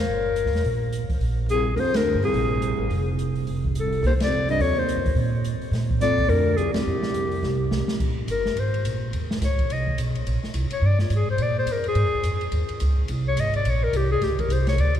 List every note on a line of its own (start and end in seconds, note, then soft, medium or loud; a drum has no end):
0.00 1.07 A#4 medium
0.07 0.43 G1 medium
0.36 closed hi-hat medium
0.45 0.53 C#2 medium
0.45 snare soft
0.53 0.62 E2 medium
0.53 snare soft
0.53 open hi-hat soft
0.63 1.06 A#1 medium
0.63 open hi-hat soft
0.93 closed hi-hat medium
1.09 muted upright bass stroke soft
1.09 kick medium
1.09 open hi-hat soft
1.19 1.74 A#1 medium
1.19 open hi-hat soft
1.49 1.73 C2 medium
1.49 1.74 G#4 loud
1.49 closed hi-hat medium
1.74 1.79 D2 medium
1.74 2.12 F2 medium
1.74 1.96 F2 medium
1.74 1.81 A#4 medium
1.74 open hi-hat soft
1.80 1.98 C5 loud
1.94 2.21 D2 medium
1.94 2.24 A#4 loud
1.94 snare medium
1.94 ride medium
2.15 2.23 G2 medium
2.22 3.15 C2 medium
2.22 2.33 F2 medium
2.22 3.16 G#4 medium
2.22 open hi-hat soft
2.34 2.76 A#1 medium
2.34 open hi-hat soft
2.62 closed hi-hat soft
2.79 2.89 A1 medium
2.90 3.44 F1 medium
2.90 open hi-hat soft
3.19 closed hi-hat soft
3.35 open hi-hat soft
3.47 4.01 F1 medium
3.47 open hi-hat soft
3.64 kick medium
3.75 4.04 C2 medium
3.75 closed hi-hat medium
3.80 4.04 A4 medium
3.92 open hi-hat soft
4.03 4.57 C2 medium
4.03 4.12 D#2 medium
4.03 4.14 C5 medium
4.03 open hi-hat soft
4.20 4.48 F2 medium
4.20 4.48 D5 loud
4.20 snare medium
4.20 ride medium
4.49 4.62 G2 medium
4.49 4.63 D#5 loud
4.49 open hi-hat soft
4.59 4.95 D#2 medium
4.59 4.78 F2 medium
4.59 4.80 C#5 loud
4.59 open hi-hat soft
4.77 5.17 D#2 medium
4.77 5.18 C5 medium
4.89 closed hi-hat medium
4.97 5.06 F2 medium
5.06 5.15 D2 medium
5.06 kick medium
5.06 open hi-hat soft
5.15 5.58 A#2 medium
5.15 open hi-hat soft
5.44 closed hi-hat medium
5.60 muted upright bass stroke soft
5.60 open hi-hat soft
5.71 6.26 A#2 medium
5.71 snare soft
5.71 open hi-hat soft
5.90 kick medium
6.01 6.30 F2 medium
6.01 6.31 D5 loud
6.01 snare soft
6.01 closed hi-hat medium
6.18 kick medium
6.18 open hi-hat soft
6.29 6.58 D2 medium
6.29 6.71 F2 medium
6.29 6.58 A#4 loud
6.29 open hi-hat soft
6.57 6.73 C2 medium
6.57 6.73 G#4 medium
6.57 closed hi-hat medium
6.74 7.84 C2 medium
6.74 7.83 G4 medium
6.74 muted upright bass stroke soft
6.74 snare medium
6.74 ride medium
6.86 7.40 F2 medium
7.03 snare medium
7.14 closed hi-hat medium
7.32 open hi-hat soft
7.43 7.85 C2 medium
7.43 snare soft
7.71 snare medium
7.87 muted upright bass stroke soft
7.87 snare medium
7.99 8.27 A#1 medium
7.99 kick medium
7.99 crash medium
8.28 8.55 G1 medium
8.28 8.61 A#4 medium
8.28 hi-hat pedal soft
8.28 ride medium
8.46 snare soft
8.56 8.84 G#1 medium
8.56 8.86 C5 medium
8.56 ride medium
8.74 ride soft
8.84 9.12 A#1 medium
8.84 hi-hat pedal soft
8.84 ride medium
9.13 9.40 D#2 medium
9.13 ride medium
9.31 snare medium
9.41 9.68 C#2 medium
9.41 9.74 C#5 medium
9.41 snare soft
9.41 hi-hat pedal medium
9.41 ride medium
9.59 kick soft
9.59 ride soft
9.70 9.97 C2 medium
9.70 9.99 D#5 medium
9.70 ride medium
9.87 kick soft
9.98 10.25 B1 medium
9.98 hi-hat pedal medium
9.98 ride medium
10.15 ride soft
10.27 10.42 A#1 medium
10.27 ride medium
10.43 muted upright bass stroke soft
10.43 snare soft
10.54 10.70 C2 medium
10.54 hi-hat pedal soft
10.54 ride medium
10.70 10.87 C#5 medium
10.70 ride medium
10.82 11.10 G2 medium
10.86 11.00 D5 loud
10.99 11.17 F4 soft
10.99 snare soft
11.10 11.38 G#2 medium
11.10 hi-hat pedal medium
11.10 ride medium
11.15 11.30 G#4 medium
11.31 11.44 C5 medium
11.38 11.66 A#2 medium
11.38 ride medium
11.42 11.58 D5 loud
11.59 11.74 C5 medium
11.66 11.94 F2 medium
11.66 hi-hat pedal soft
11.66 ride medium
11.72 11.87 A#4 medium
11.84 ride soft
11.88 12.50 G#4 loud
11.95 12.04 G#2 medium
11.95 ride medium
12.04 12.14 F2 medium
12.14 12.23 D2 medium
12.23 12.51 F2 medium
12.23 hi-hat pedal soft
12.23 ride medium
12.41 ride soft
12.52 12.68 D#2 medium
12.52 ride medium
12.69 muted upright bass stroke soft
12.69 ride soft
12.80 13.08 C#2 medium
12.80 hi-hat pedal medium
12.80 ride medium
13.08 13.36 C2 medium
13.08 ride medium
13.28 13.41 C#5 loud
13.36 13.64 G#1 medium
13.36 13.55 D#5 medium
13.36 hi-hat pedal medium
13.36 ride medium
13.54 13.71 D5 medium
13.54 ride soft
13.65 13.92 A#1 medium
13.65 ride medium
13.69 13.85 C#5 medium
13.84 13.98 A#4 loud
13.93 14.21 C2 medium
13.93 14.11 G4 medium
13.93 hi-hat pedal soft
13.93 ride medium
14.11 14.25 G#4 loud
14.21 14.48 C#2 medium
14.21 14.41 G4 medium
14.21 snare soft
14.21 ride medium
14.39 14.54 A#4 medium
14.39 kick medium
14.39 ride soft
14.48 14.77 C2 medium
14.48 hi-hat pedal medium
14.48 ride medium
14.53 14.68 C5 medium
14.67 14.82 C#5 medium
14.67 snare medium
14.67 ride soft
14.77 15.00 D2 medium
14.77 14.96 D5 medium
14.77 ride medium
14.95 ride soft